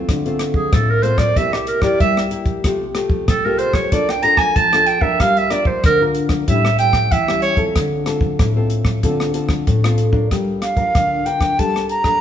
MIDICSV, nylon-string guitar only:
0, 0, Header, 1, 2, 480
1, 0, Start_track
1, 0, Key_signature, -1, "minor"
1, 0, Tempo, 638978
1, 65, Time_signature, 4, 2, 24, 8
1, 9171, End_track
2, 0, Start_track
2, 0, Title_t, "Nylon-string guitar"
2, 0, Program_c, 0, 24
2, 0, Note_on_c, 0, 57, 61
2, 0, Note_on_c, 0, 60, 61
2, 0, Note_on_c, 0, 65, 70
2, 62, Note_on_c, 0, 50, 72
2, 182, Note_off_c, 0, 57, 0
2, 184, Note_off_c, 0, 60, 0
2, 186, Note_off_c, 0, 65, 0
2, 190, Note_on_c, 0, 57, 57
2, 195, Note_on_c, 0, 60, 65
2, 195, Note_on_c, 0, 65, 65
2, 510, Note_off_c, 0, 57, 0
2, 511, Note_off_c, 0, 60, 0
2, 512, Note_off_c, 0, 65, 0
2, 520, Note_off_c, 0, 50, 0
2, 541, Note_on_c, 0, 45, 67
2, 544, Note_on_c, 0, 57, 47
2, 546, Note_on_c, 0, 60, 49
2, 549, Note_on_c, 0, 65, 61
2, 745, Note_off_c, 0, 57, 0
2, 747, Note_off_c, 0, 60, 0
2, 749, Note_off_c, 0, 65, 0
2, 772, Note_on_c, 0, 57, 59
2, 776, Note_on_c, 0, 60, 54
2, 779, Note_on_c, 0, 65, 66
2, 980, Note_off_c, 0, 57, 0
2, 983, Note_off_c, 0, 60, 0
2, 984, Note_off_c, 0, 65, 0
2, 1000, Note_off_c, 0, 45, 0
2, 1024, Note_on_c, 0, 48, 75
2, 1025, Note_on_c, 0, 58, 60
2, 1030, Note_on_c, 0, 64, 60
2, 1030, Note_on_c, 0, 67, 63
2, 1347, Note_off_c, 0, 58, 0
2, 1348, Note_off_c, 0, 64, 0
2, 1349, Note_off_c, 0, 67, 0
2, 1363, Note_on_c, 0, 58, 64
2, 1369, Note_on_c, 0, 64, 59
2, 1369, Note_on_c, 0, 67, 77
2, 1482, Note_off_c, 0, 48, 0
2, 1505, Note_on_c, 0, 55, 74
2, 1697, Note_off_c, 0, 58, 0
2, 1698, Note_off_c, 0, 64, 0
2, 1699, Note_off_c, 0, 67, 0
2, 1734, Note_on_c, 0, 58, 52
2, 1739, Note_on_c, 0, 64, 56
2, 1740, Note_on_c, 0, 67, 62
2, 1961, Note_off_c, 0, 58, 0
2, 1962, Note_off_c, 0, 55, 0
2, 1962, Note_off_c, 0, 64, 0
2, 1964, Note_off_c, 0, 67, 0
2, 1982, Note_on_c, 0, 48, 72
2, 1986, Note_on_c, 0, 57, 59
2, 1986, Note_on_c, 0, 65, 61
2, 1990, Note_on_c, 0, 67, 66
2, 2126, Note_off_c, 0, 57, 0
2, 2127, Note_off_c, 0, 65, 0
2, 2129, Note_off_c, 0, 67, 0
2, 2213, Note_on_c, 0, 57, 62
2, 2218, Note_on_c, 0, 65, 61
2, 2223, Note_on_c, 0, 67, 74
2, 2441, Note_off_c, 0, 48, 0
2, 2465, Note_on_c, 0, 48, 69
2, 2541, Note_off_c, 0, 57, 0
2, 2544, Note_off_c, 0, 65, 0
2, 2545, Note_off_c, 0, 67, 0
2, 2590, Note_on_c, 0, 57, 67
2, 2595, Note_on_c, 0, 65, 61
2, 2598, Note_on_c, 0, 67, 72
2, 2910, Note_off_c, 0, 57, 0
2, 2912, Note_off_c, 0, 65, 0
2, 2914, Note_off_c, 0, 67, 0
2, 2922, Note_off_c, 0, 48, 0
2, 2942, Note_on_c, 0, 58, 74
2, 2947, Note_on_c, 0, 62, 65
2, 2952, Note_on_c, 0, 65, 59
2, 2952, Note_on_c, 0, 69, 69
2, 3087, Note_off_c, 0, 62, 0
2, 3088, Note_off_c, 0, 65, 0
2, 3090, Note_off_c, 0, 69, 0
2, 3178, Note_on_c, 0, 62, 64
2, 3180, Note_on_c, 0, 65, 62
2, 3185, Note_on_c, 0, 69, 66
2, 3402, Note_off_c, 0, 58, 0
2, 3425, Note_on_c, 0, 53, 69
2, 3504, Note_off_c, 0, 62, 0
2, 3505, Note_off_c, 0, 65, 0
2, 3507, Note_off_c, 0, 69, 0
2, 3554, Note_on_c, 0, 62, 65
2, 3557, Note_on_c, 0, 65, 65
2, 3559, Note_on_c, 0, 69, 73
2, 3752, Note_off_c, 0, 62, 0
2, 3753, Note_off_c, 0, 65, 0
2, 3755, Note_off_c, 0, 69, 0
2, 3764, Note_on_c, 0, 62, 69
2, 3768, Note_on_c, 0, 65, 57
2, 3770, Note_on_c, 0, 70, 75
2, 3882, Note_off_c, 0, 53, 0
2, 3905, Note_on_c, 0, 55, 74
2, 4097, Note_off_c, 0, 62, 0
2, 4099, Note_off_c, 0, 65, 0
2, 4099, Note_off_c, 0, 70, 0
2, 4133, Note_on_c, 0, 62, 58
2, 4136, Note_on_c, 0, 65, 55
2, 4139, Note_on_c, 0, 70, 59
2, 4362, Note_off_c, 0, 55, 0
2, 4365, Note_off_c, 0, 62, 0
2, 4366, Note_off_c, 0, 65, 0
2, 4368, Note_off_c, 0, 70, 0
2, 4383, Note_on_c, 0, 50, 75
2, 4511, Note_on_c, 0, 62, 57
2, 4517, Note_on_c, 0, 65, 61
2, 4518, Note_on_c, 0, 70, 65
2, 4831, Note_off_c, 0, 62, 0
2, 4832, Note_off_c, 0, 65, 0
2, 4834, Note_off_c, 0, 70, 0
2, 4841, Note_off_c, 0, 50, 0
2, 4864, Note_on_c, 0, 45, 78
2, 4864, Note_on_c, 0, 55, 63
2, 4867, Note_on_c, 0, 61, 58
2, 4870, Note_on_c, 0, 64, 61
2, 5005, Note_off_c, 0, 55, 0
2, 5008, Note_off_c, 0, 61, 0
2, 5009, Note_off_c, 0, 64, 0
2, 5093, Note_on_c, 0, 55, 59
2, 5100, Note_on_c, 0, 61, 56
2, 5102, Note_on_c, 0, 64, 65
2, 5321, Note_off_c, 0, 45, 0
2, 5343, Note_on_c, 0, 52, 73
2, 5422, Note_off_c, 0, 55, 0
2, 5423, Note_off_c, 0, 61, 0
2, 5425, Note_off_c, 0, 64, 0
2, 5470, Note_on_c, 0, 55, 66
2, 5474, Note_on_c, 0, 61, 58
2, 5476, Note_on_c, 0, 64, 64
2, 5670, Note_off_c, 0, 55, 0
2, 5671, Note_off_c, 0, 61, 0
2, 5672, Note_off_c, 0, 64, 0
2, 5683, Note_on_c, 0, 60, 57
2, 5687, Note_on_c, 0, 65, 66
2, 5690, Note_on_c, 0, 69, 73
2, 5800, Note_off_c, 0, 52, 0
2, 5824, Note_on_c, 0, 50, 72
2, 6016, Note_off_c, 0, 60, 0
2, 6018, Note_off_c, 0, 65, 0
2, 6019, Note_off_c, 0, 69, 0
2, 6055, Note_on_c, 0, 60, 60
2, 6058, Note_on_c, 0, 65, 63
2, 6061, Note_on_c, 0, 69, 65
2, 6281, Note_off_c, 0, 50, 0
2, 6305, Note_on_c, 0, 45, 71
2, 6382, Note_off_c, 0, 60, 0
2, 6383, Note_off_c, 0, 65, 0
2, 6385, Note_off_c, 0, 69, 0
2, 6430, Note_on_c, 0, 60, 67
2, 6434, Note_on_c, 0, 65, 69
2, 6437, Note_on_c, 0, 69, 68
2, 6750, Note_off_c, 0, 60, 0
2, 6751, Note_off_c, 0, 65, 0
2, 6753, Note_off_c, 0, 69, 0
2, 6761, Note_off_c, 0, 45, 0
2, 6785, Note_on_c, 0, 50, 77
2, 6786, Note_on_c, 0, 60, 64
2, 6788, Note_on_c, 0, 65, 62
2, 6792, Note_on_c, 0, 69, 68
2, 6987, Note_off_c, 0, 60, 0
2, 6989, Note_off_c, 0, 65, 0
2, 6990, Note_off_c, 0, 69, 0
2, 7016, Note_on_c, 0, 60, 57
2, 7018, Note_on_c, 0, 65, 65
2, 7021, Note_on_c, 0, 69, 63
2, 7242, Note_off_c, 0, 50, 0
2, 7265, Note_on_c, 0, 45, 78
2, 7342, Note_off_c, 0, 60, 0
2, 7343, Note_off_c, 0, 65, 0
2, 7345, Note_off_c, 0, 69, 0
2, 7389, Note_on_c, 0, 60, 63
2, 7392, Note_on_c, 0, 65, 66
2, 7399, Note_on_c, 0, 69, 61
2, 7589, Note_off_c, 0, 60, 0
2, 7591, Note_off_c, 0, 65, 0
2, 7592, Note_off_c, 0, 69, 0
2, 7604, Note_on_c, 0, 62, 60
2, 7608, Note_on_c, 0, 65, 58
2, 7610, Note_on_c, 0, 70, 64
2, 7721, Note_off_c, 0, 45, 0
2, 7745, Note_on_c, 0, 55, 65
2, 7936, Note_off_c, 0, 62, 0
2, 7938, Note_off_c, 0, 65, 0
2, 7939, Note_off_c, 0, 70, 0
2, 8083, Note_on_c, 0, 62, 54
2, 8086, Note_on_c, 0, 65, 55
2, 8092, Note_on_c, 0, 70, 63
2, 8201, Note_off_c, 0, 55, 0
2, 8226, Note_on_c, 0, 50, 64
2, 8416, Note_off_c, 0, 62, 0
2, 8418, Note_off_c, 0, 65, 0
2, 8419, Note_off_c, 0, 70, 0
2, 8453, Note_on_c, 0, 62, 56
2, 8456, Note_on_c, 0, 65, 55
2, 8461, Note_on_c, 0, 70, 59
2, 8661, Note_off_c, 0, 62, 0
2, 8663, Note_off_c, 0, 65, 0
2, 8665, Note_off_c, 0, 70, 0
2, 8682, Note_off_c, 0, 50, 0
2, 8701, Note_on_c, 0, 55, 66
2, 8706, Note_on_c, 0, 58, 53
2, 8706, Note_on_c, 0, 62, 53
2, 8709, Note_on_c, 0, 69, 57
2, 9026, Note_off_c, 0, 58, 0
2, 9028, Note_off_c, 0, 62, 0
2, 9029, Note_off_c, 0, 69, 0
2, 9044, Note_on_c, 0, 58, 65
2, 9049, Note_on_c, 0, 62, 59
2, 9051, Note_on_c, 0, 69, 62
2, 9160, Note_off_c, 0, 55, 0
2, 9171, Note_off_c, 0, 58, 0
2, 9171, Note_off_c, 0, 62, 0
2, 9171, Note_off_c, 0, 69, 0
2, 9171, End_track
0, 0, End_of_file